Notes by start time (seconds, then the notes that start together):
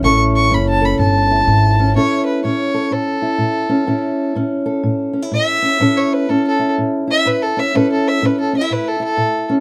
0.03 A1 A2 C#4 E4 A4 C#6
0.36 C#6
0.51 F#1 A2 C#4 B5
0.69 A5
0.81 A4 B5
0.99 G1 A2 A5
1.31 E4
1.47 G#1
1.79 C#4
1.96 A2 C#4 E4 A4 C#5
2.26 B4
2.44 A2 C#4 C#5
2.74 A4
2.91 A2 A4
3.22 E4
3.38 A2
3.69 C#4
3.87 A2 C#4 E4
4.35 A2 C#4
4.66 A4
4.83 A2
5.13 C#4
5.22 E4
5.32 A2 E5
5.62 C#4
5.80 A2 C#4 E4 A4
5.97 C#5
6.13 B4
6.29 A2 C#4 A4
6.47 A4
6.59 E4
6.78 A2
7.07 E4 E5
7.25 A2 B4
7.42 A4
7.57 C#4 E5
7.75 A2 C#4 E4 A4 B4
7.92 A4
8.08 E5
8.22 A2 C#4 B4
8.40 A4
8.53 C#4 E5
8.61 E4
8.70 A2 B4
8.88 A4
9.00 E4
9.04 A4
9.17 A2
9.49 C#4